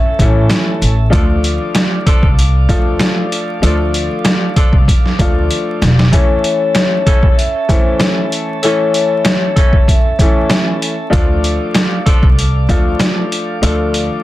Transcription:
Already playing: tonewheel organ C#4 A4 E5 A5, vibraphone E5
0.18 upright bass A1, upright piano E3 A3 C#4 E4 A4, vibraphone C#5, kick, closed hi-hat
0.49 snare, closed hi-hat
0.82 upright bass A1, closed hi-hat
1.10 upright bass D2, upright piano F3 A3 D4 F4 A4, saxophone section F3 D4 A4, tonewheel organ D5 F5 D6, kick, closed hi-hat
1.44 closed hi-hat
1.75 snare, closed hi-hat
2.06 saxophone section F3 D4 A4, kick, closed hi-hat
2.23 upright bass C2, kick
2.39 closed hi-hat
2.69 upright piano F3 A3 D4 F4 A4, kick, closed hi-hat
3.00 snare, closed hi-hat
3.32 closed hi-hat
3.62 upright bass D2, upright piano F3 A3 D4 F4 A4, saxophone section F3 D4 A4, closed hi-hat
3.94 closed hi-hat
4.25 snare, closed hi-hat
4.56 saxophone section F3 D4 A4, kick, closed hi-hat
4.73 upright bass C2, kick
4.88 kick, closed hi-hat
5.06 snare
5.19 upright bass D2, upright piano F3 A3 D4 F4 A4, kick, closed hi-hat
5.51 closed hi-hat
5.82 upright bass E1, snare, closed hi-hat
5.99 snare
6.12 saxophone section E3 C#4 A4, upright piano E3 A3 C#4 E4 A4, tonewheel organ C#4 A4 E5 A5, vibraphone C#5, kick, closed hi-hat
6.44 vibraphone C#5, closed hi-hat
6.75 snare, closed hi-hat
7.06 saxophone section E3 C#4 A4, kick, closed hi-hat
7.23 kick
7.37 vibraphone E5, closed hi-hat
7.69 upright piano E3 A3 C#4 E4 A4, vibraphone C5, kick, closed hi-hat
8.00 vibraphone C#5, snare, closed hi-hat
8.32 closed hi-hat
8.62 saxophone section E3 C#4 A4, upright piano E3 A3 C#4 E4 A4, vibraphone C#5, closed hi-hat
8.94 vibraphone C#5, closed hi-hat
9.25 snare, closed hi-hat
9.56 saxophone section E3 C#4 A4, kick, closed hi-hat
9.73 kick
9.88 vibraphone E5, kick, closed hi-hat
10.19 upright piano E3 A3 C#4 E4 A4, vibraphone C#5, kick, closed hi-hat
10.50 snare, closed hi-hat
10.82 closed hi-hat
11.10 upright bass D2, upright piano F3 A3 D4 F4 A4, saxophone section F3 D4 A4, tonewheel organ D5 F5 D6, kick, closed hi-hat
11.44 closed hi-hat
11.75 snare, closed hi-hat
12.06 saxophone section F3 D4 A4, kick, closed hi-hat
12.23 upright bass C2, kick
12.39 closed hi-hat
12.69 upright bass D2, upright piano F3 A3 D4 F4 A4, kick, closed hi-hat
12.99 snare, closed hi-hat
13.32 closed hi-hat
13.62 upright bass D2, upright piano F3 A3 D4 F4 A4, saxophone section F3 D4 A4, closed hi-hat
13.94 closed hi-hat

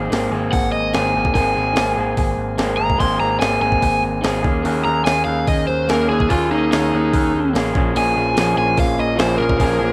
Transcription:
Already playing: picked electric bass G#1, clean electric guitar A#3 C4 G#4
0.10 picked electric bass G#1, clean electric guitar D#3 A#3 C4 G#4, snare, open hi-hat
0.31 picked electric bass G#1, clean electric guitar A#3 C4 G#4
0.52 picked electric bass G#1, overdriven electric guitar F#5, kick, open hi-hat
0.72 picked electric bass G#1, overdriven electric guitar D#5
0.93 picked electric bass G#1, clean electric guitar D#3 A#3 C4 G#4, overdriven electric guitar G#5, snare, open hi-hat
1.06 snare
1.14 picked electric bass G#1, clean electric guitar A#3 C4 G#4
1.25 kick
1.34 picked electric bass G#1, clean electric guitar D#3 A#3 C4 G#4, overdriven electric guitar G#5, kick, open hi-hat
1.54 picked electric bass G#1, clean electric guitar A#3 C4 G#4
1.73 clean electric guitar D#3 A#3 C4 G#4, snare, open hi-hat
1.77 picked electric bass G#1
1.94 clean electric guitar A#3 C4 G#4
1.98 picked electric bass G#1
2.17 picked electric bass G#1, kick, open hi-hat
2.37 picked electric bass G#1
2.58 picked electric bass G#1, clean electric guitar D#3 A#3 C4 G#4, snare, open hi-hat
2.77 picked electric bass G#1, clean electric guitar A#3 C4 G#4, overdriven electric guitar A#5
2.90 kick
2.97 picked electric bass G#1, clean electric guitar D#3 A#3 C4 G#4, overdriven electric guitar C6, kick, open hi-hat
3.18 picked electric bass G#1, clean electric guitar A#3 C4 G#4, overdriven electric guitar A#5
3.40 picked electric bass G#1, clean electric guitar D#3 A#3 C4 G#4, overdriven electric guitar G#5, snare, open hi-hat
3.60 picked electric bass G#1, clean electric guitar A#3 C4 G#4, overdriven electric guitar G#5
3.72 kick
3.82 picked electric bass G#1, kick, open hi-hat
4.03 picked electric bass G#1
4.21 picked electric bass G#1, clean electric guitar D#3 A#3 C4 G#4, snare, open hi-hat
4.43 picked electric bass D#2, clean electric guitar A#3 C#4 G#4, kick
4.62 picked electric bass D#2, clean electric guitar A#3 C#4 G#4, open hi-hat
4.83 picked electric bass D#2, clean electric guitar G#4, overdriven electric guitar A#5
4.87 clean electric guitar C#4
5.03 picked electric bass D#2, clean electric guitar A#3 C#4 G#4, overdriven electric guitar G#5, snare, open hi-hat
5.25 picked electric bass D#2, clean electric guitar G#4, overdriven electric guitar F5
5.29 clean electric guitar C#4
5.47 picked electric bass D#2, overdriven electric guitar D#5, kick, open hi-hat
5.67 picked electric bass D#2, overdriven electric guitar C5
5.88 picked electric bass D#2, clean electric guitar A#3 C#4 G#4, overdriven electric guitar A#4, snare, open hi-hat
6.08 picked electric bass D#2, clean electric guitar C#4 G#4, overdriven electric guitar G#4
6.20 kick
6.29 picked electric bass D#2, clean electric guitar A#3 C#4 G#4, overdriven electric guitar F4, kick, open hi-hat
6.50 picked electric bass D#2, clean electric guitar C#4 G#4, overdriven electric guitar D#4
6.70 picked electric bass D#2, clean electric guitar A#3 C#4 G#4, overdriven electric guitar D#4, snare, open hi-hat
6.92 picked electric bass D#2, clean electric guitar C#4 G#4
7.13 picked electric bass D#2, kick, open hi-hat
7.34 picked electric bass D#2
7.53 picked electric bass A1, clean electric guitar A#3 C#4, snare, open hi-hat
7.58 clean electric guitar G#4
7.66 snare
7.73 picked electric bass A#1, clean electric guitar F3 A#3 C#4 G#4, kick
7.94 picked electric bass A#1, clean electric guitar F3 A#3 C#4 G#4, overdriven electric guitar G#5, open hi-hat
8.14 picked electric bass A#1, clean electric guitar A#3 C#4 G#4
8.35 picked electric bass A#1, clean electric guitar F3 A#3 C#4 G#4, snare, open hi-hat
8.54 picked electric bass A#1, clean electric guitar A#3 C#4 G#4, overdriven electric guitar G#5
8.77 picked electric bass A#1, overdriven electric guitar F5, kick, open hi-hat
8.98 picked electric bass A#1, overdriven electric guitar D#5
9.16 picked electric bass A#1, clean electric guitar F3 A#3 C#4 G#4, overdriven electric guitar C5, snare, open hi-hat
9.37 picked electric bass A#1, clean electric guitar A#3 C#4 G#4, overdriven electric guitar A#4
9.49 kick
9.58 picked electric bass A#1, clean electric guitar F3 A#3 C#4 G#4, kick, open hi-hat
9.79 picked electric bass A#1, clean electric guitar A#3 C#4 G#4

